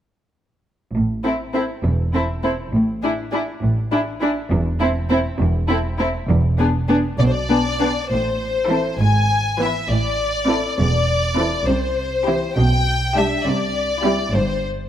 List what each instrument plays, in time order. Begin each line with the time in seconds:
0.94 double bass section A1, cello section A2
1.24 viola section C4, violin section E4 A4
1.54 viola section C4, violin section E4 A4
1.84 double bass section E1, cello section E2
2.14 viola section C4, violin section E4 A4
2.43 viola section C4, violin section E4 A4
2.73 double bass section A1, cello section A2
3.02 viola section D4, violin section E4 G#4
3.32 viola section D4, violin section E4 G#4
3.62 double bass section A1, cello section A2
3.92 viola section D4, violin section E4 G#4
4.21 viola section D4, violin section E4 G#4
4.51 double bass section E1, cello section E2
4.80 viola section C4, violin section E4 A4
5.10 viola section C4, violin section E4 A4
5.40 double bass section E1, cello section E2
5.68 viola section C4, violin section E4 A4
5.99 viola section C4, violin section E4 A4
6.29 double bass section E1, cello section E2
6.59 viola section B3, violin section D4 G#4
6.88 viola section B3, violin section D4 G#4
7.19 double bass section B1, cello section B2, violin section D5
7.26 violin section C5
7.32 violin section D5
7.49 viola section B3, violin section D4 G#4
7.80 viola section B3, violin section D4 G#4
8.10 double bass section A1, cello section A2, violin section C5
8.70 viola section E3 C4, violin section E4 A4
9.00 double bass section G#1, cello section G#2, violin section G#5
9.59 viola section E3 B3, violin section E4 B4 E5
9.90 double bass section A1, cello section A2, violin section D5
10.49 viola section E3 C4, violin section E4 A4
10.79 double bass section E1, cello section E2, violin section D5
11.38 viola section E3 C4, violin section E4 A4
11.68 double bass section C2, cello section C3, violin section C5
12.27 viola section E3 C4, violin section E4 G4
12.56 double bass section B1, cello section B2, violin section G5
13.16 viola section G3 D4, violin section D4 G4 E5
13.46 double bass section C2, cello section C3, violin section D5
14.05 viola section G3 C4, violin section E4 G4
14.34 double bass section G1, cello section G2, violin section C5